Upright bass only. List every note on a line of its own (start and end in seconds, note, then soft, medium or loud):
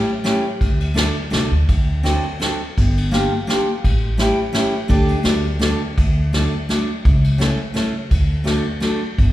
0.61 1.07 D2 medium
1.32 1.50 C2 medium
1.51 1.66 D2 medium
1.69 2.16 D2 medium
2.78 3.24 G1 medium
3.84 4.30 A1 medium
4.90 5.13 D2 medium
5.24 5.72 D2 medium
5.98 6.44 D2 medium
7.05 7.51 C#2 medium
8.11 8.57 D2 medium
9.18 9.33 G1 medium